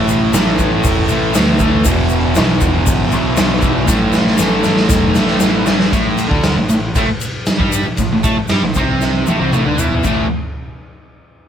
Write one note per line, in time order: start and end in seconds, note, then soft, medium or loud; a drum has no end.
0.00 0.31 A2 medium
0.00 0.34 E3 medium
0.00 0.35 A3 loud
0.08 0.33 A1 medium
0.08 shaker medium
0.33 0.58 A1 medium
0.33 1.32 A2 loud
0.33 1.11 E3 medium
0.33 1.06 A3 loud
0.33 snare loud
0.33 open hi-hat medium
0.33 shaker loud
0.59 0.83 A1 loud
0.59 kick medium
0.59 shaker medium
0.84 1.09 E1 medium
0.84 kick loud
0.84 open hi-hat medium
0.84 shaker loud
1.07 1.34 E3 medium
1.07 1.36 A3 medium
1.07 shaker medium
1.11 1.34 A1 loud
1.34 1.84 D2 medium
1.34 1.84 A2 medium
1.34 1.63 E3 medium
1.34 1.58 A3 medium
1.34 snare loud
1.34 open hi-hat medium
1.34 shaker loud
1.59 1.83 A3 medium
1.59 kick medium
1.59 shaker medium
1.63 1.88 E3 medium
1.85 2.10 E1 medium
1.85 2.34 E2 medium
1.85 2.35 B2 loud
1.85 2.38 E3 medium
1.85 kick loud
1.85 open hi-hat medium
1.85 shaker loud
2.09 2.36 E1 medium
2.09 shaker medium
2.35 2.61 B1 loud
2.35 3.34 E2 medium
2.35 3.12 B2 medium
2.35 3.08 E3 loud
2.35 snare loud
2.35 open hi-hat medium
2.35 shaker loud
2.61 2.86 E1 medium
2.61 kick medium
2.61 shaker medium
2.86 3.11 G1 medium
2.86 kick loud
2.86 open hi-hat medium
2.86 shaker loud
3.09 3.38 E3 medium
3.09 shaker medium
3.13 3.37 B1 loud
3.13 3.36 B2 medium
3.35 3.86 B1 medium
3.35 3.86 E2 medium
3.35 3.62 B2 medium
3.35 3.59 E3 medium
3.35 snare loud
3.35 open hi-hat medium
3.35 shaker medium
3.59 3.87 E3 medium
3.59 kick medium
3.59 shaker medium
3.63 3.86 B2 medium
3.86 4.13 A1 medium
3.86 4.36 A2 loud
3.86 4.37 E3 loud
3.86 4.40 A3 loud
3.86 kick loud
3.86 snare medium
3.86 shaker loud
4.13 4.39 A1 medium
4.13 snare medium
4.13 shaker medium
4.27 snare medium
4.37 4.64 A1 loud
4.37 5.39 A2 medium
4.37 5.18 E3 loud
4.37 5.15 A3 loud
4.37 snare medium
4.37 shaker loud
4.63 4.89 A1 medium
4.63 snare medium
4.63 shaker medium
4.77 snare medium
4.89 5.14 E1 medium
4.89 kick loud
4.89 snare medium
4.89 shaker loud
5.14 5.40 A1 medium
5.14 5.43 A3 medium
5.14 snare loud
5.14 shaker medium
5.19 5.41 E3 medium
5.27 snare medium
5.40 5.90 A1 medium
5.40 5.91 A2 medium
5.40 5.67 E3 medium
5.40 snare loud
5.40 shaker medium
5.45 5.64 A3 medium
5.65 5.92 E3 medium
5.65 5.91 A3 medium
5.65 snare loud
5.65 shaker medium
5.80 snare loud
5.92 6.29 A1 medium
5.92 6.28 A2 medium
5.92 6.30 A3 loud
5.92 kick loud
5.92 ride medium
5.92 shaker medium
6.18 ride medium
6.18 shaker medium
6.28 6.55 D2 loud
6.28 6.55 D3 loud
6.28 6.56 D4 loud
6.28 kick loud
6.28 snare soft
6.44 snare loud
6.44 ride medium
6.44 shaker medium
6.56 6.68 A1 medium
6.56 6.67 A2 medium
6.69 6.93 A1 medium
6.69 6.90 A2 medium
6.69 ride medium
6.69 shaker medium
6.95 7.08 A1 medium
6.95 7.06 A2 medium
6.95 7.08 A3 loud
6.95 kick loud
6.95 ride loud
6.95 shaker medium
7.07 muted distorted electric guitar stroke medium
7.07 muted picked electric bass stroke soft
7.21 ride medium
7.21 shaker medium
7.46 snare loud
7.46 ride medium
7.46 shaker medium
7.58 7.84 G2 loud
7.58 7.84 G3 medium
7.58 7.85 G4 medium
7.58 kick loud
7.72 ride medium
7.72 shaker medium
7.86 muted distorted electric guitar stroke medium
7.86 muted picked electric bass stroke soft
7.97 8.11 A1 medium
7.97 8.12 A2 medium
7.97 kick medium
7.97 ride medium
7.97 shaker medium
8.11 8.23 A1 medium
8.11 8.25 A2 medium
8.24 8.36 A2 medium
8.24 8.36 A3 medium
8.24 8.36 A4 medium
8.24 kick loud
8.24 ride medium
8.24 shaker medium
8.38 muted distorted electric guitar stroke medium
8.38 muted picked electric bass stroke soft
8.48 8.62 G2 medium
8.48 8.62 G3 medium
8.48 8.63 G4 loud
8.48 snare loud
8.48 ride medium
8.48 shaker medium
8.63 8.75 A1 medium
8.63 8.76 A2 medium
8.74 9.24 C2 medium
8.74 9.27 C3 medium
8.74 9.27 C4 loud
8.74 kick loud
8.74 ride medium
8.74 shaker medium
9.01 snare medium
9.01 shaker medium
9.27 9.40 A1 medium
9.27 9.39 A2 medium
9.27 9.40 A3 loud
9.27 high tom medium
9.27 shaker medium
9.40 9.53 C2 medium
9.40 9.52 C3 medium
9.40 9.52 C4 medium
9.40 high tom medium
9.52 9.66 A1 medium
9.52 9.65 A2 medium
9.52 9.65 A3 loud
9.52 mid tom medium
9.52 shaker medium
9.66 9.79 D2 medium
9.66 9.78 D3 medium
9.66 9.79 D4 loud
9.78 10.04 E2 medium
9.78 10.04 E3 medium
9.78 10.05 E4 medium
9.78 floor tom medium
9.78 shaker medium
9.91 floor tom medium
10.04 10.29 A1 medium
10.04 10.25 A2 medium
10.04 10.26 E3 medium
10.04 10.26 A3 loud
10.04 kick medium
10.04 crash medium
10.04 shaker medium